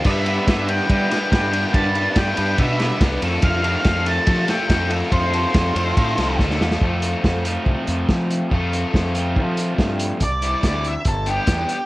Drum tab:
CC |x---------------|----------------|----------------|----------------|
RD |--x-x-x-x-x-x-x-|x-x-x-x-x-x-x-x-|x-x-x-x-x-x-x-x-|x-x-x-x-x-x-----|
HH |----------------|----------------|----------------|----------------|
SD |----o-----o-o---|----o-----o-o---|----o-----o-o---|----o-----o-oooo|
BD |o---o---o---o---|o---o---o---o---|o---o---o---o---|o---o---o---o---|

CC |----------------|----------------|----------------|
RD |----------------|----------------|----------------|
HH |--x---x---x---x-|--x---x---x---x-|x-x-x-x-x-x-x-x-|
SD |----o-------o---|----o-------o---|----o-------o---|
BD |o---o---o---o---|o---o---o---o---|o---o---o---o---|